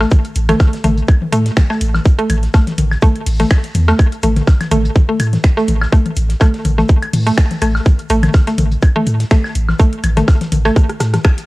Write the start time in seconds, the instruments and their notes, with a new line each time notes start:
0.01 synth arpeggio sound A3, snare, high woodblock
0.11 kick, high tom, shaker
0.25 closed hi-hat
0.36 sub bass A1, closed hi-hat, shaker
0.49 synth arpeggio sound A3, snare, closed hi-hat, mid tom, high tom, claves
0.60 kick, snare, high woodblock, shaker
0.73 snare, closed hi-hat
0.84 sub bass A1, synth arpeggio sound A3, closed hi-hat, mid tom, high tom, shaker
0.98 closed hi-hat
1.09 kick, claves, shaker
1.22 high tom
1.33 sub bass A2, synth arpeggio sound A3, closed hi-hat, shaker
1.46 snare, closed hi-hat
1.57 finger snap, kick, snare, high tom, shaker
1.70 synth arpeggio sound A3, snare, claves
1.81 sub bass A1, closed hi-hat, shaker
1.94 snare, high tom, high woodblock
2.05 kick, shaker
2.19 synth arpeggio sound A3, closed hi-hat
2.29 sub bass A1, closed hi-hat, high tom, claves, shaker
2.43 snare, closed hi-hat
2.54 synth arpeggio sound A3, kick, snare, high woodblock, shaker
2.67 snare, closed hi-hat, high tom
2.78 sub bass A1, closed hi-hat, mid tom, shaker
2.91 snare, claves
3.02 synth arpeggio sound A3, kick, high tom, shaker
3.15 closed hi-hat
3.26 sub bass A1, closed hi-hat, open hi-hat
3.39 synth arpeggio sound A3, snare, closed hi-hat, high tom
3.50 finger snap, kick, snare, claves, shaker
3.64 snare, closed hi-hat
3.74 sub bass E2, closed hi-hat, high tom, shaker
3.87 synth arpeggio sound A3, snare, high woodblock
3.99 kick, claves, shaker
4.12 closed hi-hat
4.23 sub bass A1, synth arpeggio sound A3, closed hi-hat, high tom, shaker
4.36 snare, closed hi-hat, mid tom
4.47 kick, snare, high woodblock, shaker
4.60 snare, closed hi-hat, high tom, claves
4.71 sub bass A1, synth arpeggio sound A3, closed hi-hat, mid tom, shaker
4.85 closed hi-hat
4.96 kick, high tom, shaker
5.09 synth arpeggio sound A3
5.20 sub bass A2, closed hi-hat, claves, shaker
5.33 snare, closed hi-hat, high tom
5.44 finger snap, kick, snare, shaker
5.57 synth arpeggio sound A3, snare
5.68 sub bass A1, closed hi-hat, high tom, shaker
5.81 snare, claves, high woodblock
5.92 synth arpeggio sound A3, kick, shaker
6.06 closed hi-hat, high tom
6.16 sub bass A1, closed hi-hat, shaker
6.29 snare, closed hi-hat
6.40 synth arpeggio sound A3, kick, snare, high tom, claves, high woodblock, shaker
6.54 snare, closed hi-hat
6.65 sub bass A1, closed hi-hat, mid tom, shaker
6.78 synth arpeggio sound A3, snare, high tom
6.89 kick, shaker
7.02 closed hi-hat, claves
7.13 sub bass A2, closed hi-hat, open hi-hat, high tom
7.27 synth arpeggio sound A3, snare, closed hi-hat
7.37 finger snap, kick, snare, shaker
7.51 snare, closed hi-hat, high tom
7.62 sub bass A1, synth arpeggio sound A3, closed hi-hat, claves, shaker
7.75 snare, high woodblock
7.86 kick, high tom, shaker
7.99 closed hi-hat
8.09 sub bass A1, synth arpeggio sound A3, closed hi-hat, shaker
8.23 snare, closed hi-hat, mid tom, high tom, claves
8.34 kick, snare, high woodblock, shaker
8.48 synth arpeggio sound A3, snare, closed hi-hat
8.58 sub bass A1, closed hi-hat, mid tom, high tom, shaker
8.72 closed hi-hat
8.83 kick, claves, shaker
8.96 synth arpeggio sound A3, high tom
9.07 sub bass A2, closed hi-hat, shaker
9.20 snare, closed hi-hat
9.31 synth arpeggio sound A3, finger snap, kick, snare, high tom, shaker
9.44 snare, claves
9.55 sub bass A1, closed hi-hat, shaker
9.68 snare, high tom, high woodblock
9.79 synth arpeggio sound A3, kick, shaker
9.93 closed hi-hat
10.04 sub bass A1, closed hi-hat, high tom, claves, shaker
10.16 synth arpeggio sound A3, snare, closed hi-hat, mid tom
10.28 kick, snare, high woodblock, shaker
10.41 snare, closed hi-hat, high tom
10.52 sub bass A1, closed hi-hat, mid tom, shaker
10.65 synth arpeggio sound A3, snare, claves
10.76 kick, cross-stick, high tom, shaker
10.89 cross-stick, closed hi-hat
11.00 sub bass A2, cross-stick, snare, closed hi-hat, shaker
11.14 cross-stick, snare, closed hi-hat, high tom
11.24 finger snap, kick, cross-stick, claves, shaker
11.38 closed hi-hat